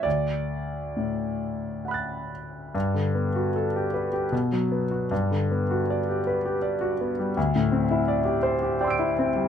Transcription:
0, 0, Header, 1, 2, 480
1, 0, Start_track
1, 0, Key_signature, 1, "major"
1, 0, Tempo, 896861
1, 27, Time_signature, 3, 2, 24, 8
1, 1466, Tempo, 809717
1, 1946, Tempo, 777202
1, 3386, Tempo, 729927
1, 5753, End_track
2, 0, Start_track
2, 0, Title_t, "Grand piano"
2, 0, Program_c, 0, 0
2, 0, Control_c, 0, 64, 127
2, 16, Note_on_c, 0, 74, 58
2, 27, Note_on_c, 0, 38, 44
2, 38, Control_c, 0, 64, 0
2, 133, Control_c, 0, 64, 127
2, 518, Note_on_c, 0, 45, 33
2, 989, Note_on_c, 0, 78, 26
2, 1008, Note_on_c, 0, 83, 26
2, 1023, Note_on_c, 0, 90, 25
2, 1039, Note_on_c, 0, 93, 27
2, 1226, Note_off_c, 0, 74, 0
2, 1446, Note_off_c, 0, 38, 0
2, 1448, Note_off_c, 0, 78, 0
2, 1457, Note_off_c, 0, 83, 0
2, 1465, Note_off_c, 0, 90, 0
2, 1470, Note_on_c, 0, 43, 54
2, 1472, Note_off_c, 0, 45, 0
2, 1473, Note_off_c, 0, 93, 0
2, 1480, Control_c, 0, 64, 0
2, 1587, Note_on_c, 0, 50, 38
2, 1588, Control_c, 0, 64, 127
2, 1709, Note_on_c, 0, 59, 37
2, 1781, Note_off_c, 0, 50, 0
2, 1831, Note_on_c, 0, 66, 44
2, 1900, Note_off_c, 0, 59, 0
2, 1952, Note_on_c, 0, 69, 46
2, 2020, Note_off_c, 0, 66, 0
2, 2078, Note_on_c, 0, 67, 43
2, 2142, Note_off_c, 0, 69, 0
2, 2186, Note_on_c, 0, 71, 47
2, 2262, Note_off_c, 0, 67, 0
2, 2305, Note_on_c, 0, 67, 43
2, 2375, Note_off_c, 0, 71, 0
2, 2398, Note_off_c, 0, 43, 0
2, 2422, Note_off_c, 0, 67, 0
2, 2424, Note_on_c, 0, 47, 49
2, 2431, Control_c, 0, 64, 0
2, 2531, Control_c, 0, 64, 127
2, 2549, Note_on_c, 0, 54, 41
2, 2668, Note_on_c, 0, 59, 40
2, 2739, Note_off_c, 0, 54, 0
2, 2788, Note_on_c, 0, 66, 44
2, 2862, Note_off_c, 0, 59, 0
2, 2895, Note_off_c, 0, 47, 0
2, 2910, Note_off_c, 0, 66, 0
2, 2911, Note_on_c, 0, 43, 54
2, 2919, Control_c, 0, 64, 0
2, 3033, Control_c, 0, 64, 127
2, 3034, Note_on_c, 0, 50, 37
2, 3159, Note_on_c, 0, 59, 42
2, 3226, Note_off_c, 0, 50, 0
2, 3278, Note_on_c, 0, 66, 47
2, 3345, Note_off_c, 0, 59, 0
2, 3401, Note_on_c, 0, 74, 48
2, 3465, Note_off_c, 0, 66, 0
2, 3524, Note_on_c, 0, 67, 44
2, 3590, Note_off_c, 0, 74, 0
2, 3642, Note_on_c, 0, 71, 45
2, 3711, Note_off_c, 0, 67, 0
2, 3764, Note_on_c, 0, 67, 44
2, 3832, Note_off_c, 0, 71, 0
2, 3873, Note_on_c, 0, 74, 45
2, 3954, Note_off_c, 0, 67, 0
2, 3997, Note_on_c, 0, 66, 47
2, 4071, Note_off_c, 0, 74, 0
2, 4127, Note_on_c, 0, 59, 42
2, 4194, Note_off_c, 0, 66, 0
2, 4249, Note_on_c, 0, 55, 43
2, 4318, Note_off_c, 0, 59, 0
2, 4337, Note_off_c, 0, 43, 0
2, 4365, Note_off_c, 0, 55, 0
2, 4365, Note_on_c, 0, 38, 60
2, 4373, Control_c, 0, 64, 0
2, 4465, Control_c, 0, 64, 127
2, 4487, Note_on_c, 0, 45, 44
2, 4596, Note_on_c, 0, 60, 45
2, 4671, Note_off_c, 0, 45, 0
2, 4720, Note_on_c, 0, 64, 51
2, 4784, Note_off_c, 0, 60, 0
2, 4833, Note_on_c, 0, 74, 52
2, 4906, Note_off_c, 0, 64, 0
2, 4946, Note_on_c, 0, 67, 50
2, 5023, Note_off_c, 0, 74, 0
2, 5062, Note_on_c, 0, 72, 52
2, 5140, Note_off_c, 0, 67, 0
2, 5189, Note_on_c, 0, 67, 51
2, 5260, Note_off_c, 0, 72, 0
2, 5311, Note_on_c, 0, 79, 39
2, 5313, Note_on_c, 0, 74, 48
2, 5334, Note_on_c, 0, 84, 39
2, 5354, Note_on_c, 0, 88, 36
2, 5375, Note_on_c, 0, 98, 37
2, 5385, Note_off_c, 0, 67, 0
2, 5433, Note_on_c, 0, 64, 51
2, 5506, Note_off_c, 0, 74, 0
2, 5560, Note_on_c, 0, 60, 48
2, 5624, Note_off_c, 0, 64, 0
2, 5675, Note_on_c, 0, 55, 43
2, 5744, Note_off_c, 0, 60, 0
2, 5753, Note_off_c, 0, 38, 0
2, 5753, Note_off_c, 0, 55, 0
2, 5753, Note_off_c, 0, 79, 0
2, 5753, Note_off_c, 0, 84, 0
2, 5753, Note_off_c, 0, 88, 0
2, 5753, Note_off_c, 0, 98, 0
2, 5753, End_track
0, 0, End_of_file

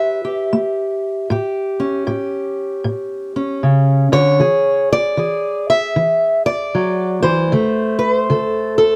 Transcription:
0, 0, Header, 1, 2, 480
1, 0, Start_track
1, 0, Tempo, 777202
1, 805, Time_signature, 4, 2, 24, 8
1, 5532, End_track
2, 0, Start_track
2, 0, Title_t, "Steel-string acoustic guitar"
2, 0, Program_c, 0, 25
2, 0, Note_on_c, 0, 57, 74
2, 0, Note_on_c, 0, 67, 50
2, 0, Note_on_c, 0, 71, 87
2, 0, Note_on_c, 0, 76, 83
2, 145, Note_off_c, 0, 67, 0
2, 152, Note_on_c, 0, 67, 43
2, 158, Note_off_c, 0, 71, 0
2, 292, Note_off_c, 0, 57, 0
2, 325, Note_on_c, 0, 57, 66
2, 770, Note_off_c, 0, 57, 0
2, 785, Note_off_c, 0, 67, 0
2, 803, Note_on_c, 0, 45, 78
2, 811, Note_on_c, 0, 67, 57
2, 1110, Note_on_c, 0, 61, 53
2, 1249, Note_off_c, 0, 45, 0
2, 1271, Note_off_c, 0, 67, 0
2, 1277, Note_on_c, 0, 45, 75
2, 1279, Note_on_c, 0, 67, 44
2, 1357, Note_off_c, 0, 76, 0
2, 1357, Note_on_c, 0, 74, 83
2, 1726, Note_off_c, 0, 45, 0
2, 1756, Note_on_c, 0, 45, 70
2, 2069, Note_off_c, 0, 61, 0
2, 2076, Note_on_c, 0, 61, 47
2, 2205, Note_off_c, 0, 45, 0
2, 2240, Note_off_c, 0, 74, 0
2, 2242, Note_on_c, 0, 49, 53
2, 2543, Note_off_c, 0, 49, 0
2, 2545, Note_on_c, 0, 50, 64
2, 2549, Note_on_c, 0, 73, 102
2, 2700, Note_off_c, 0, 67, 0
2, 2707, Note_off_c, 0, 61, 0
2, 2715, Note_on_c, 0, 52, 75
2, 2721, Note_on_c, 0, 68, 54
2, 2723, Note_off_c, 0, 50, 0
2, 3029, Note_off_c, 0, 73, 0
2, 3042, Note_on_c, 0, 74, 104
2, 3165, Note_off_c, 0, 52, 0
2, 3195, Note_on_c, 0, 52, 72
2, 3196, Note_off_c, 0, 68, 0
2, 3204, Note_on_c, 0, 68, 47
2, 3515, Note_off_c, 0, 74, 0
2, 3518, Note_on_c, 0, 76, 104
2, 3645, Note_off_c, 0, 52, 0
2, 3681, Note_on_c, 0, 52, 68
2, 3987, Note_off_c, 0, 76, 0
2, 3990, Note_on_c, 0, 74, 95
2, 4128, Note_off_c, 0, 52, 0
2, 4166, Note_on_c, 0, 54, 65
2, 4460, Note_off_c, 0, 68, 0
2, 4462, Note_on_c, 0, 72, 99
2, 4467, Note_off_c, 0, 54, 0
2, 4469, Note_on_c, 0, 52, 63
2, 4645, Note_off_c, 0, 52, 0
2, 4645, Note_on_c, 0, 50, 77
2, 4646, Note_off_c, 0, 74, 0
2, 4649, Note_on_c, 0, 57, 47
2, 4925, Note_off_c, 0, 72, 0
2, 4933, Note_on_c, 0, 71, 83
2, 5019, Note_off_c, 0, 71, 0
2, 5019, Note_on_c, 0, 72, 83
2, 5090, Note_off_c, 0, 50, 0
2, 5124, Note_on_c, 0, 50, 70
2, 5129, Note_on_c, 0, 69, 43
2, 5419, Note_off_c, 0, 69, 0
2, 5422, Note_on_c, 0, 69, 83
2, 5532, Note_off_c, 0, 50, 0
2, 5532, Note_off_c, 0, 57, 0
2, 5532, Note_off_c, 0, 69, 0
2, 5532, Note_off_c, 0, 72, 0
2, 5532, End_track
0, 0, End_of_file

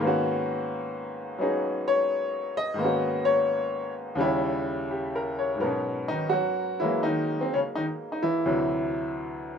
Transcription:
0, 0, Header, 1, 2, 480
1, 0, Start_track
1, 0, Key_signature, 5, "minor"
1, 0, Tempo, 692841
1, 14, Time_signature, 4, 2, 24, 8
1, 2414, Tempo, 712589
1, 5294, Tempo, 693642
1, 6556, End_track
2, 0, Start_track
2, 0, Title_t, "Upright piano"
2, 0, Program_c, 0, 0
2, 0, Note_on_c, 0, 44, 66
2, 0, Note_on_c, 0, 51, 56
2, 4, Note_on_c, 0, 58, 56
2, 19, Note_on_c, 0, 59, 58
2, 32, Note_on_c, 0, 61, 53
2, 49, Note_on_c, 0, 66, 69
2, 956, Note_off_c, 0, 59, 0
2, 960, Note_on_c, 0, 54, 50
2, 966, Note_on_c, 0, 59, 44
2, 967, Note_off_c, 0, 61, 0
2, 977, Note_on_c, 0, 63, 48
2, 978, Note_on_c, 0, 61, 44
2, 984, Note_on_c, 0, 68, 52
2, 1300, Note_on_c, 0, 73, 90
2, 1753, Note_off_c, 0, 73, 0
2, 1782, Note_on_c, 0, 75, 105
2, 1888, Note_off_c, 0, 44, 0
2, 1898, Note_on_c, 0, 44, 55
2, 1901, Note_off_c, 0, 51, 0
2, 1911, Note_on_c, 0, 51, 48
2, 1918, Note_off_c, 0, 58, 0
2, 1928, Note_off_c, 0, 54, 0
2, 1929, Note_on_c, 0, 58, 53
2, 1930, Note_off_c, 0, 59, 0
2, 1936, Note_off_c, 0, 61, 0
2, 1936, Note_off_c, 0, 63, 0
2, 1939, Note_off_c, 0, 68, 0
2, 1942, Note_on_c, 0, 59, 51
2, 1949, Note_off_c, 0, 66, 0
2, 1961, Note_on_c, 0, 61, 48
2, 1973, Note_on_c, 0, 66, 58
2, 2237, Note_off_c, 0, 75, 0
2, 2252, Note_on_c, 0, 73, 89
2, 2708, Note_off_c, 0, 73, 0
2, 2865, Note_on_c, 0, 39, 70
2, 2874, Note_off_c, 0, 44, 0
2, 2875, Note_on_c, 0, 49, 61
2, 2880, Note_off_c, 0, 51, 0
2, 2883, Note_on_c, 0, 55, 63
2, 2888, Note_off_c, 0, 58, 0
2, 2895, Note_off_c, 0, 59, 0
2, 2899, Note_on_c, 0, 64, 76
2, 2904, Note_off_c, 0, 61, 0
2, 2910, Note_off_c, 0, 66, 0
2, 3374, Note_on_c, 0, 67, 50
2, 3539, Note_on_c, 0, 70, 58
2, 3687, Note_off_c, 0, 67, 0
2, 3695, Note_on_c, 0, 73, 53
2, 3792, Note_off_c, 0, 70, 0
2, 3809, Note_on_c, 0, 44, 43
2, 3826, Note_on_c, 0, 54, 41
2, 3841, Note_on_c, 0, 59, 73
2, 3845, Note_on_c, 0, 70, 43
2, 3848, Note_off_c, 0, 39, 0
2, 3853, Note_off_c, 0, 49, 0
2, 3856, Note_off_c, 0, 59, 0
2, 3857, Note_off_c, 0, 55, 0
2, 3862, Note_on_c, 0, 47, 58
2, 3865, Note_off_c, 0, 64, 0
2, 3866, Note_on_c, 0, 59, 43
2, 3882, Note_on_c, 0, 61, 50
2, 3949, Note_off_c, 0, 73, 0
2, 4165, Note_on_c, 0, 63, 77
2, 4168, Note_off_c, 0, 47, 0
2, 4179, Note_on_c, 0, 51, 60
2, 4307, Note_on_c, 0, 66, 81
2, 4318, Note_off_c, 0, 54, 0
2, 4321, Note_off_c, 0, 51, 0
2, 4328, Note_on_c, 0, 54, 63
2, 4329, Note_off_c, 0, 63, 0
2, 4638, Note_off_c, 0, 54, 0
2, 4645, Note_on_c, 0, 64, 71
2, 4654, Note_on_c, 0, 54, 43
2, 4659, Note_on_c, 0, 52, 57
2, 4661, Note_off_c, 0, 66, 0
2, 4664, Note_on_c, 0, 56, 38
2, 4673, Note_on_c, 0, 58, 45
2, 4801, Note_off_c, 0, 52, 0
2, 4802, Note_on_c, 0, 63, 78
2, 4809, Note_off_c, 0, 64, 0
2, 4815, Note_on_c, 0, 51, 66
2, 5059, Note_on_c, 0, 60, 56
2, 5062, Note_off_c, 0, 51, 0
2, 5082, Note_off_c, 0, 63, 0
2, 5133, Note_off_c, 0, 61, 0
2, 5135, Note_off_c, 0, 60, 0
2, 5143, Note_on_c, 0, 61, 73
2, 5156, Note_on_c, 0, 49, 58
2, 5176, Note_off_c, 0, 61, 0
2, 5190, Note_off_c, 0, 49, 0
2, 5290, Note_on_c, 0, 63, 77
2, 5304, Note_on_c, 0, 51, 58
2, 5352, Note_off_c, 0, 63, 0
2, 5364, Note_off_c, 0, 51, 0
2, 5544, Note_on_c, 0, 63, 55
2, 5616, Note_on_c, 0, 64, 81
2, 5620, Note_off_c, 0, 63, 0
2, 5622, Note_on_c, 0, 52, 55
2, 5754, Note_off_c, 0, 44, 0
2, 5772, Note_off_c, 0, 52, 0
2, 5773, Note_off_c, 0, 70, 0
2, 5774, Note_off_c, 0, 54, 0
2, 5776, Note_on_c, 0, 38, 52
2, 5777, Note_on_c, 0, 48, 48
2, 5780, Note_off_c, 0, 56, 0
2, 5783, Note_off_c, 0, 59, 0
2, 5783, Note_on_c, 0, 52, 45
2, 5784, Note_off_c, 0, 58, 0
2, 5787, Note_on_c, 0, 54, 55
2, 6222, Note_off_c, 0, 64, 0
2, 6556, Note_off_c, 0, 38, 0
2, 6556, Note_off_c, 0, 48, 0
2, 6556, Note_off_c, 0, 52, 0
2, 6556, Note_off_c, 0, 54, 0
2, 6556, End_track
0, 0, End_of_file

